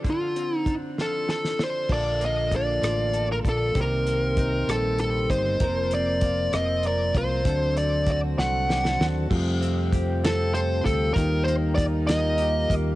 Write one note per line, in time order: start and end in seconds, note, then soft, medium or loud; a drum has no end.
0.00 1.90 D3 medium
0.00 0.98 F3 medium
0.00 0.35 C4 soft
0.00 0.67 D4 soft
0.00 1.28 A4 medium
0.04 kick medium
0.04 closed hi-hat medium
0.10 0.57 F4 medium
0.36 1.97 C4 soft
0.36 closed hi-hat soft
0.57 0.73 D#4 medium
0.66 1.60 D4 soft
0.66 kick medium
0.66 closed hi-hat medium
0.98 1.97 F3 medium
0.98 1.28 A4 medium
0.98 snare soft
1.29 1.91 A4 soft
1.29 1.61 A4 medium
1.29 snare soft
1.45 snare soft
1.59 1.97 D4 soft
1.59 1.90 C5 medium
1.59 snare medium
1.89 2.79 A#1 medium
1.89 3.74 D3 soft
1.89 3.74 F3 soft
1.89 7.42 A#3 soft
1.89 3.74 F4 soft
1.89 3.74 A4 soft
1.89 3.13 A4 medium
1.89 2.24 D5 medium
1.89 kick medium
1.89 crash medium
2.21 4.06 A#3 medium
2.21 closed hi-hat soft
2.25 2.52 D#5 medium
2.52 3.43 D4 soft
2.52 kick medium
2.52 closed hi-hat medium
2.56 3.27 D5 medium
2.82 3.41 A1 medium
2.82 3.82 F3 medium
2.82 cross-stick loud
2.82 closed hi-hat medium
3.14 3.76 A4 medium
3.14 closed hi-hat soft
3.32 3.37 A#4 medium
3.44 3.74 A#1 medium
3.44 3.82 D4 soft
3.44 kick medium
3.44 closed hi-hat medium
3.49 3.78 A4 medium
3.75 4.64 C2 medium
3.75 5.61 C3 medium
3.75 5.59 D#3 soft
3.75 7.42 C4 soft
3.75 5.59 G4 soft
3.75 5.59 C5 medium
3.75 kick loud
3.75 closed hi-hat medium
3.81 4.71 A#4 medium
4.06 5.67 A#3 medium
4.06 closed hi-hat soft
4.37 5.28 D#4 soft
4.37 kick medium
4.37 closed hi-hat medium
4.67 5.26 A#1 medium
4.67 5.60 G3 medium
4.67 4.99 A4 medium
4.67 cross-stick loud
4.67 closed hi-hat medium
4.98 5.29 A4 medium
4.98 closed hi-hat soft
5.29 5.59 G1 medium
5.29 5.67 D#4 medium
5.29 5.94 C5 medium
5.29 kick medium
5.29 closed hi-hat medium
5.60 6.49 F1 medium
5.60 7.46 F3 medium
5.60 7.44 F3 soft
5.60 7.44 A#4 medium
5.60 6.84 A#4 medium
5.60 9.27 C5 medium
5.60 kick loud
5.60 closed hi-hat medium
5.91 6.54 C4 medium
5.91 6.51 D5 medium
5.91 closed hi-hat soft
6.21 7.14 F4 soft
6.21 kick medium
6.21 closed hi-hat medium
6.52 7.11 F1 medium
6.52 7.75 C4 medium
6.52 6.83 D#5 medium
6.52 cross-stick medium
6.52 closed hi-hat medium
6.83 7.46 A#4 medium
6.83 7.14 D5 medium
6.83 closed hi-hat soft
7.15 7.44 C2 medium
7.15 7.52 F4 medium
7.15 7.74 C5 medium
7.15 kick medium
7.15 closed hi-hat medium
7.44 8.34 D2 medium
7.44 9.31 D3 medium
7.44 9.29 F#3 medium
7.44 9.28 C4 medium
7.44 9.28 D4 soft
7.44 9.28 A4 medium
7.44 8.69 A4 medium
7.44 kick medium
7.44 closed hi-hat medium
7.76 9.36 C4 medium
7.76 8.09 D5 medium
7.76 closed hi-hat soft
8.07 8.98 F#4 medium
8.07 kick medium
8.07 closed hi-hat medium
8.11 8.19 D5 medium
8.37 8.96 C2 medium
8.37 9.30 A3 medium
8.37 9.04 F#5 medium
8.37 snare soft
8.69 8.84 G4 medium
8.69 snare medium
8.84 9.37 A4 medium
8.84 snare medium
9.00 9.29 D#2 medium
9.00 9.37 F#4 medium
9.00 snare medium
9.30 10.81 F2 loud
9.30 11.13 C3 medium
9.30 11.19 F3 medium
9.30 12.95 G3 medium
9.30 11.13 A3 soft
9.30 11.11 C4 medium
9.30 12.95 F4 medium
9.30 11.13 G4 medium
9.30 kick loud
9.30 crash medium
9.61 10.23 C4 medium
9.61 closed hi-hat soft
9.92 11.76 G4 medium
9.92 kick medium
9.92 closed hi-hat medium
10.24 10.84 C4 medium
10.24 10.54 A4 medium
10.24 snare loud
10.24 closed hi-hat medium
10.54 11.22 A4 medium
10.54 10.85 C5 medium
10.54 closed hi-hat soft
10.85 11.14 D2 medium
10.85 11.22 C4 medium
10.85 11.13 A4 medium
10.85 kick medium
10.85 closed hi-hat medium
11.14 12.65 D#2 medium
11.14 12.95 D#3 medium
11.14 12.95 A#3 medium
11.14 12.95 D#4 loud
11.14 12.95 G4 medium
11.14 11.44 A#4 medium
11.14 kick medium
11.14 closed hi-hat medium
11.45 12.07 A#3 medium
11.45 11.53 C5 medium
11.45 closed hi-hat soft
11.75 12.95 F4 medium
11.75 11.83 D5 loud
11.75 kick medium
11.75 closed hi-hat medium
12.07 12.69 A#3 medium
12.07 12.73 D#5 medium
12.07 snare loud
12.07 closed hi-hat medium
12.38 12.95 G4 medium
12.38 closed hi-hat soft
12.70 12.95 D#2 medium
12.70 12.95 A#3 medium
12.70 kick medium
12.70 closed hi-hat medium